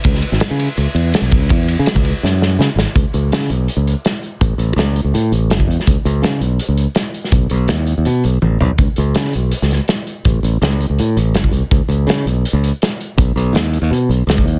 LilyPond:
<<
  \new Staff \with { instrumentName = "Fingered electric bass" } { \clef bass \time 4/4 \key b \mixolydian \tempo 4 = 164 cis,8 r16 gis,,16 r16 cis8 r16 cis,16 r16 e,8 r16 b,,8 cis,16 | e,8. cis16 r16 cis,8 r16 fis,4 cis16 r16 gis,,16 r16 | cis,16 r16 cis,8 cis8 b,,8 r16 cis,8 r4 r16 | a,,8 a,,8 cis,8. cis,16 a,8 a,,8 fis,,8 e,16 r16 |
cis,16 r16 cis,8 cis8 b,,8 r16 cis,8 r4 r16 | b,,8 b,,8 dis,8. dis,16 b,8 b,,8 a,,8 b,,16 r16 | cis,16 r16 cis,8 cis8 b,,8 r16 cis,8 r4 r16 | a,,8 a,,8 cis,8. cis,16 a,8 a,,8 fis,,8 c,16 r16 |
cis,16 r16 cis,8 cis8 b,,8 r16 cis,8 r4 r16 | b,,8 b,,8 dis,8. dis,16 b,8 b,,8 cis,8 dis,8 | }
  \new DrumStaff \with { instrumentName = "Drums" } \drummode { \time 4/4 <bd cymr>16 sn16 cymr16 sn16 <cymr sn>8 cymr8 cymr8 cymr8 <cymr sn>8 <bd cymr>8 | <bd cymr>8 cymr8 <cymr sn>16 bd16 cymr8 sn8 sn8 sn8 sn8 | <hh bd>8 hh8 <hh sn>16 sn16 hh8 hh8 hh8 <hh sn>8 hh8 | <hh bd>8 hh8 <hh sn>8 hh8 hh8 hh8 <hh sn>16 bd16 hh16 sn16 |
<hh bd>8 hh8 <hh sn>8 hh8 hh8 hh8 <hh sn>8 hh16 sn16 | <hh bd>8 hh8 <hh sn>8 hh8 hh8 hh8 tommh8 tomfh8 | <hh bd>8 hh8 <hh sn>16 sn16 hh8 hh16 sn16 <hh sn>8 <hh sn>8 hh8 | <hh bd>8 hh8 <hh sn>8 hh8 hh8 hh8 <hh sn>16 bd16 hh8 |
<hh bd>8 hh8 <hh sn>8 hh8 hh8 hh8 <hh sn>8 hh8 | <hh bd>8 hh8 <hh sn>8 hh8 hh8 hh8 <hh sn>16 bd16 hh8 | }
>>